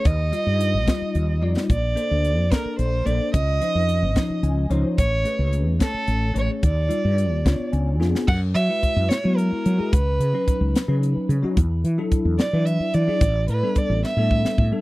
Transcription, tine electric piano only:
0.32 0.81 G3 medium
0.32 0.81 D#4 medium
0.32 0.81 F4 medium
0.32 0.81 D#5 medium
0.86 1.35 G3 medium
0.86 1.35 D#4 medium
0.86 1.36 F4 medium
0.86 1.36 D#5 medium
1.42 1.69 G3 medium
1.42 1.69 D#4 medium
1.42 1.70 F4 medium
1.42 1.70 D5 medium
1.95 2.44 A#3 medium
1.95 2.45 D4 medium
1.95 2.45 A4 medium
1.95 2.45 C5 medium
2.51 3.00 A#3 medium
2.51 3.00 D4 medium
2.51 3.00 A4 medium
2.51 3.00 D5 medium
3.05 3.33 A#3 medium
3.05 3.34 D4 medium
3.05 3.34 A4 medium
3.05 3.34 C5 medium
3.61 4.09 F3 medium
3.61 4.10 C#4 medium
3.61 4.10 D#4 medium
3.61 4.10 C5 medium
4.15 4.64 F3 medium
4.15 4.64 C#4 medium
4.15 4.65 D#4 medium
4.15 4.65 D#5 medium
4.43 4.69 G#5 medium
4.70 4.98 F3 medium
4.70 4.98 C#4 medium
4.70 4.98 D#4 medium
4.70 4.99 C5 medium
4.70 4.96 C#5 medium
5.24 5.74 A3 medium
5.24 5.74 C#4 medium
5.24 5.74 G#4 medium
5.24 5.74 B4 medium
5.79 6.28 A3 medium
5.79 6.28 C#4 medium
5.79 6.29 A4 medium
5.79 6.29 C#5 medium
6.34 6.62 A3 medium
6.34 6.62 C#4 medium
6.34 6.63 G#4 medium
6.34 6.63 C#5 medium
6.89 7.38 G3 medium
6.89 7.38 D#4 medium
6.89 7.38 F4 medium
6.89 7.39 D5 medium
7.45 7.93 B3 medium
7.45 7.94 D4 medium
7.45 7.94 F4 medium
7.45 7.94 C#5 medium
7.73 8.24 G#5 medium
8.00 8.27 B3 medium
8.00 8.28 D4 medium
8.00 8.28 F4 medium
8.00 8.28 G#4 medium
8.69 9.17 G#3 medium
8.69 9.17 E4 medium
8.69 9.18 F#4 medium
8.69 9.18 B4 medium
9.23 9.72 G#3 medium
9.23 9.73 B3 medium
9.23 9.72 E4 medium
9.23 9.72 F#4 medium
9.78 9.92 G#3 medium
9.78 9.92 E4 medium
9.78 9.93 F#4 medium
9.78 9.93 G#4 medium
10.33 10.82 F#3 medium
10.33 10.82 C#4 medium
10.33 10.82 D#4 medium
10.33 10.83 B4 medium
10.88 11.37 F#3 medium
10.88 11.37 C#4 medium
10.88 11.37 D#4 medium
10.88 11.37 B4 medium
11.43 11.57 F#3 medium
11.43 11.57 C#4 medium
11.43 11.57 D#4 medium
11.43 11.57 F#4 loud
11.98 12.46 F#3 medium
11.98 12.47 D4 medium
11.98 12.47 E4 medium
11.98 12.47 A4 medium
12.53 13.01 F#3 medium
12.53 13.02 D4 medium
12.53 13.02 E4 medium
12.53 13.02 B4 medium
13.07 13.21 F#3 medium
13.07 13.21 D4 medium
13.07 13.22 E4 medium
13.07 13.22 G#4 medium
13.63 14.11 G3 medium
13.63 14.11 B3 medium
13.63 14.12 D4 medium
13.63 14.12 A4 medium
14.17 14.66 G3 medium
14.17 14.66 B3 medium
14.17 14.66 D4 medium
14.17 14.66 A4 medium
14.72 14.81 G3 medium
14.72 14.81 B3 medium
14.72 14.81 D4 medium
14.72 14.81 A4 medium

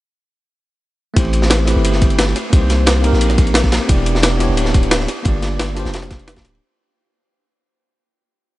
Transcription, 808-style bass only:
1.16 1.75 A1 loud
1.76 2.34 G1 medium
2.53 3.11 C2 loud
3.13 3.79 A#1 medium
3.89 4.48 E1 loud
4.49 5.07 D1 medium
5.25 5.84 G1 loud
5.85 6.46 F1 medium
6.45 6.60 D1 medium

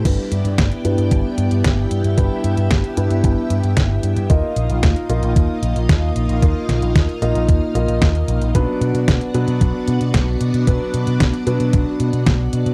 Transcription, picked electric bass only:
0.05 0.15 G1 loud
0.32 0.42 G2 medium
0.45 0.55 G2 medium
0.58 0.68 G1 medium
0.85 0.95 G2 medium
0.98 1.08 G2 loud
1.11 1.22 G1 loud
1.38 1.48 G2 medium
1.51 1.61 G2 medium
1.65 1.85 G1 medium
1.91 2.01 G2 medium
2.04 2.14 G2 loud
2.18 2.28 G1 medium
2.44 2.54 G2 medium
2.57 2.67 G2 medium
2.71 2.81 G1 medium
2.97 3.07 G2 medium
3.11 3.21 G2 loud
3.24 3.34 G1 loud
3.50 3.61 G2 medium
3.64 3.74 G2 medium
3.77 3.97 G1 loud
4.03 4.14 G2 medium
4.17 4.27 G2 medium
4.30 4.40 D#2 loud
4.56 4.67 A#1 medium
4.70 4.80 A#1 loud
4.83 4.93 D#2 medium
5.09 5.20 A#1 medium
5.23 5.33 A#1 loud
5.36 5.46 D#2 loud
5.62 5.73 A#1 medium
5.76 5.86 A#1 medium
5.89 6.10 D#2 loud
6.16 6.26 A#1 medium
6.29 6.39 A#1 medium
6.42 6.53 D#2 medium
6.69 6.79 A#1 medium
6.82 6.92 A#1 medium
6.95 7.06 D#2 medium
7.22 7.32 A#1 medium
7.35 7.45 A#1 loud
7.49 7.59 D#2 medium
7.75 7.85 A#1 medium
7.88 7.98 A#1 medium
8.02 8.22 D#2 medium
8.28 8.38 A#1 medium
8.41 8.52 A#1 medium
8.55 8.65 B1 medium
8.81 8.91 B2 medium
8.95 9.05 B2 medium
9.08 9.18 B1 medium
9.34 9.45 B2 medium
9.48 9.58 B2 loud
9.61 9.71 B1 loud
9.88 9.98 B2 medium
10.01 10.11 B2 medium
10.14 10.34 B1 medium
10.41 10.51 B2 medium
10.54 10.64 B2 loud
10.67 10.77 B1 medium
10.94 11.04 B2 medium
11.07 11.17 B2 loud
11.20 11.30 B1 medium
11.47 11.57 B2 medium
11.60 11.70 B2 loud
11.73 11.84 B1 loud
12.00 12.10 B2 medium
12.13 12.23 B2 medium
12.26 12.47 B1 loud
12.53 12.63 B2 medium
12.66 12.74 B2 loud

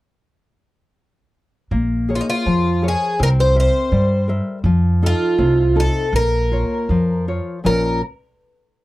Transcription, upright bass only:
1.71 2.20 A#1 medium
2.46 2.94 F2 medium
3.20 3.67 C2 medium
3.92 4.39 G2 medium
4.64 5.12 F2 medium
5.38 5.87 C2 medium
6.13 6.62 A#1 medium
6.89 7.39 F2 medium
7.65 8.00 A#1 medium

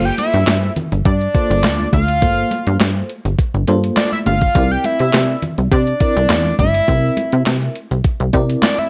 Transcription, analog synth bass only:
0.00 0.12 G1 loud
0.34 0.44 G2 loud
0.47 0.70 G2 loud
0.92 1.03 G1 medium
1.06 1.28 G2 loud
1.50 1.66 G1 loud
1.64 1.86 D2 medium
1.93 2.24 D2 medium
2.22 2.45 G1 loud
2.67 2.77 G2 loud
2.81 3.03 G2 loud
3.25 3.36 G1 medium
3.54 3.65 G1 medium
3.68 3.91 G2 medium
4.26 4.49 G1 loud
4.55 4.78 C2 loud
5.00 5.11 C3 medium
5.14 5.36 C3 loud
5.58 5.69 C2 medium
5.72 5.94 C3 loud
6.16 6.27 C2 medium
6.30 6.53 E2 medium
6.59 6.82 G1 medium
6.88 7.11 C2 loud
7.33 7.43 C3 medium
7.47 7.69 C3 loud
7.91 8.02 C2 medium
8.20 8.31 C2 medium
8.34 8.56 C3 medium

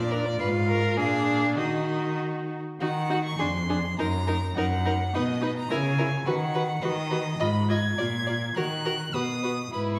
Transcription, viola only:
0.00 0.14 F4 medium
0.13 0.27 D4 medium
0.26 0.40 F4 medium
0.41 0.98 F4 medium
0.97 1.60 D4 medium
1.58 2.60 D#4 medium
2.81 2.89 D#4 medium
3.09 3.17 D#4 medium
3.40 3.48 D4 medium
3.69 3.77 D4 medium
3.99 4.07 D#4 medium
4.28 4.36 D#4 medium
4.57 4.65 D#4 medium
4.85 4.93 D#4 medium
5.14 5.22 D#4 medium
5.41 5.49 D#4 medium
5.70 5.78 E4 medium
5.99 6.07 E4 medium
6.27 6.35 F#4 medium
6.55 6.63 F#4 medium
6.83 6.91 F#4 medium
7.11 7.19 F#4 medium
7.40 7.48 F4 medium
7.69 7.77 F4 medium
7.99 8.07 F4 medium
8.28 8.36 F4 medium
8.57 8.65 F#4 medium
8.85 8.93 F#4 soft
9.14 9.22 F#4 soft
9.44 9.52 F#4 soft
9.72 9.99 E4 medium

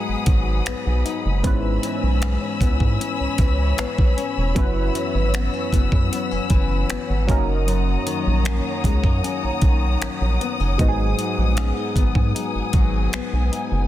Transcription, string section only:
0.00 1.41 G#4 medium
0.00 1.41 F#5 medium
0.00 7.25 B5 medium
0.00 1.41 D#6 medium
1.44 7.25 C#5 medium
1.44 4.53 G#5 medium
1.44 4.53 E6 medium
4.56 13.87 F#5 medium
4.56 7.26 E6 medium
7.28 10.76 C#5 medium
7.28 10.76 A#5 medium
7.28 13.87 D#6 medium
10.80 13.87 B3 medium
10.80 13.87 G#5 medium

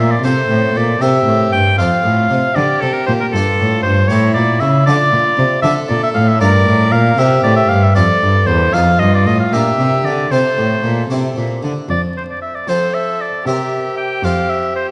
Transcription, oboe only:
0.00 0.12 E5 medium
0.11 0.24 D5 medium
0.24 0.79 C5 medium
0.77 1.03 D5 medium
1.02 1.52 E5 medium
1.52 1.77 G5 medium
1.78 2.57 F5 loud
2.55 2.82 D5 medium
2.81 2.95 A4 medium
2.94 3.06 A#4 medium
3.06 3.12 C5 medium
3.20 3.26 A#4 medium
3.32 3.82 A4 medium
3.83 4.10 C5 medium
4.09 4.33 C#5 medium
4.34 4.62 D5 medium
4.60 4.86 E5 medium
4.86 5.62 D5 loud
5.62 5.74 E5 loud
5.89 6.02 D5 medium
6.03 6.09 E5 medium
6.15 6.30 F5 medium
6.28 6.40 E5 medium
6.41 6.93 D5 loud
6.92 7.20 F5 loud
7.19 7.43 E5 loud
7.44 7.56 D5 medium
7.56 7.70 E5 loud
7.69 7.85 F5 loud
7.83 7.95 E5 medium
7.95 8.48 D5 loud
8.47 8.75 C5 medium
8.74 9.01 F5 loud
8.99 9.12 D#5 medium
9.15 9.28 D5 medium
9.27 9.39 D#5 medium
9.40 9.55 F5 medium
9.53 10.07 E5 loud
10.05 10.33 D5 medium
10.31 11.10 C5 medium
11.90 12.02 D5 medium
12.17 12.23 C5 medium
12.30 12.41 D5 medium
12.42 12.57 E5 medium
12.55 12.70 D5 medium
12.69 12.95 C5 medium
12.94 13.23 E5 medium
13.21 13.46 D5 medium
13.46 13.97 E5 medium
13.97 14.26 G5 medium
14.24 14.51 F5 medium
14.49 14.75 E5 medium
14.76 14.87 C5 medium

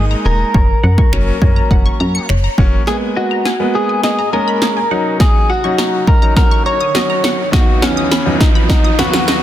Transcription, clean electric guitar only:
0.26 2.25 A#4 loud
2.88 2.96 G#4 medium
3.17 3.77 F#4 medium
3.75 4.03 G#4 medium
4.04 4.33 G#4 loud
4.33 5.17 A#4 medium
5.21 5.51 G#4 medium
5.50 6.04 F#4 medium
6.08 6.36 A#4 loud
6.37 6.66 A#4 loud
6.66 7.49 C#5 loud
7.53 7.83 F#4 medium
7.82 8.40 C#4 medium
8.40 8.48 D#4 medium
8.70 8.97 D#4 loud
8.99 9.43 F#4 loud

